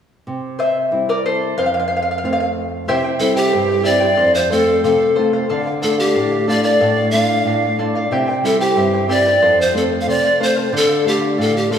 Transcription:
0.27 C3
0.59 C5 E5
0.91 G3 C4 E4
1.09 A#4 D5
1.26 A4 C5
1.58 F2 C5 F5
1.66 F5
1.74 F5
1.80 F5
1.88 F5
1.97 F5
2.02 F5
2.11 F5
2.18 F5
2.23 A3 C4 F4 F5
2.33 F5
2.40 F5
2.88 C3 E4 G4 C5 E5 G5
3.04 E4 C5 G5
3.19 G3 C4 E4 A4 C5 E5 G5
3.36 E4 G4 C5 G5
3.52 G2 E4 C5 E5 G5
3.68 E4 C5 G5
3.83 G3 C4 E4 G4 C5 D5 E5 G5
3.87 E4
4.00 E4 G4 C5 E5 G5
4.16 F2 A4 C5 F5
4.34 C5 F5
4.50 A3 C4 F4 A4 C5 F5
4.67 C5 F5
4.83 C3 A4 C5 F5
5.00 C5 F5
5.15 A3 C4 F4 A4 C5 F5
5.33 A4 C5 F5
5.49 D3 A4 D5 F5
5.65 D5 F5
5.82 A3 D4 F4 A4 D5 F5
5.98 G4 D5 F5
6.14 A2 A4 D5 F5
6.31 D5 F5
6.47 A3 D4 F4 A4 D5 F5
6.63 A4 D5 F5
6.81 A2 A4 D5 F5
6.97 D5 F5
7.11 A3 D4 F4 A4 D5 F5
7.30 D5 F5
7.45 A2 A4 D5 F5
7.63 D5 F5
7.79 A3 D4 F4 A4 D5 F5
7.95 A4 D5 F5
8.11 C3 E4 G4 C5 E5 G5
8.28 E4 C5 G5
8.43 G3 C4 E4 A4 C5 E5 G5
8.61 E4 G4 C5 G5
8.76 G2 E4 C5 E5 G5
8.93 E4 C5 G5
9.08 G3 C4 E4 G4 C5 D5 E5 G5
9.27 E4 G4 C5 E5 G5
9.41 F2 A4 C5 F5
9.60 C5 F5
9.74 A3 C4 F4 A4 C5 F5
9.92 C5 F5
10.01 F5
10.07 C3 A4 C5 D5 F5
10.24 C5 F5
10.40 A3 C4 F4 A4 C5 F5
10.56 A4 C5 F5
10.72 D3 A4 D5 F5
10.77 A4
10.89 D5 F5
11.05 A3 D4 F4 G4 A4 D5 F5
11.21 D5 F5
11.38 A2 A4 D5 F5
11.54 G4 D5 F5
11.70 A3 D4 F4 A4 D5 F5

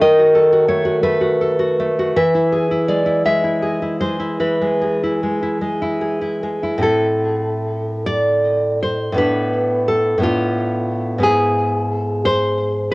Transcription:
0.01 D#3 D#5
0.19 F#4
0.35 A4
0.53 F#4
0.69 A3 C#5
0.85 F#4
1.03 A3 B4
1.21 F#4
1.41 A4
1.59 F#4
1.80 A3
1.99 F#4
2.17 E3 E5
2.35 E4
2.52 G#4
2.71 E4
2.88 G#3 D5
3.06 E4
3.26 G#3 E5
3.44 E4
3.63 G#4
3.82 E4
4.01 G#3 C5
4.20 E4
4.40 E3 B4
4.61 G#3
4.81 G#4
5.03 E4
5.23 G#3
5.42 E4
5.61 G#3
5.82 E4
6.01 G#4
6.21 E4
6.43 G#3
6.63 E4
6.78 A2 C4 E4
6.83 A4
8.06 D5
8.82 C5
9.12 A2 B3
9.17 D4 B4
9.88 A4
10.18 A2 B3
10.22 D4 F4
11.18 G#2 B3 E4
11.23 G#4
12.25 C5

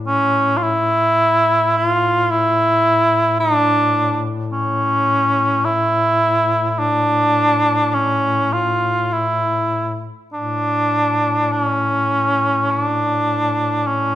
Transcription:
Already playing: A2
0.06 C#4
0.57 F4
0.63 E4
1.77 F4
2.31 E4
3.40 D4
4.52 C#4
5.65 E4
6.70 E4
6.79 D4
7.94 C#4
8.53 F4
9.13 E4
10.33 A2 D4
11.52 C#4
12.71 D4
13.87 C#4

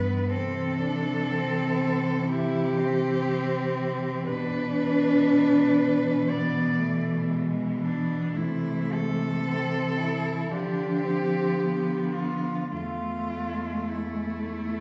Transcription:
Already playing: G2 E3 B3 B4
0.30 C3 E3 C4 A4
0.80 D4
1.31 C4
2.26 E4 G4
2.77 C4
4.26 B2 E3 D4 B4
6.29 B3 D5
6.79 A3
7.30 G#3
7.80 B3 D4
8.35 C3 A3 E4
8.93 A4
9.47 C4
9.98 E4
10.51 D3 F3 D4 G4
11.04 C4
11.58 B3
12.14 F4
12.71 E2 A3 F4
13.88 E4

